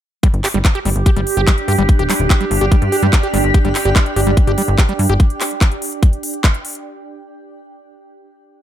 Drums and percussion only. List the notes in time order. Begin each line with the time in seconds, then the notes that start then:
0.23 kick, closed hi-hat
0.34 closed hi-hat
0.44 clap, open hi-hat
0.65 kick, clap, closed hi-hat
0.75 closed hi-hat
0.85 open hi-hat
0.96 closed hi-hat
1.06 kick, closed hi-hat
1.16 closed hi-hat
1.27 open hi-hat
1.37 closed hi-hat
1.47 kick, clap, closed hi-hat
1.58 closed hi-hat
1.68 open hi-hat
1.79 closed hi-hat
1.89 kick, closed hi-hat
1.99 closed hi-hat
2.10 clap, open hi-hat
2.20 closed hi-hat
2.30 kick, clap, closed hi-hat
2.41 closed hi-hat
2.51 open hi-hat
2.72 kick, closed hi-hat
2.82 closed hi-hat
2.92 open hi-hat
3.03 closed hi-hat
3.13 kick, clap, closed hi-hat
3.23 closed hi-hat
3.34 open hi-hat
3.44 closed hi-hat
3.54 kick, closed hi-hat
3.65 closed hi-hat
3.75 clap, open hi-hat
3.85 closed hi-hat
3.96 kick, clap, closed hi-hat
4.06 closed hi-hat
4.16 open hi-hat
4.27 closed hi-hat
4.37 kick, closed hi-hat
4.47 closed hi-hat
4.58 open hi-hat
4.68 closed hi-hat
4.78 kick, clap, closed hi-hat
4.89 closed hi-hat
4.99 open hi-hat
5.20 kick, closed hi-hat
5.30 closed hi-hat
5.41 clap, open hi-hat
5.51 closed hi-hat
5.61 kick, clap, closed hi-hat
5.72 closed hi-hat
5.82 open hi-hat
5.92 closed hi-hat
6.03 kick, closed hi-hat
6.13 closed hi-hat
6.23 open hi-hat
6.34 closed hi-hat
6.44 kick, clap, closed hi-hat
6.54 closed hi-hat
6.65 open hi-hat
6.75 closed hi-hat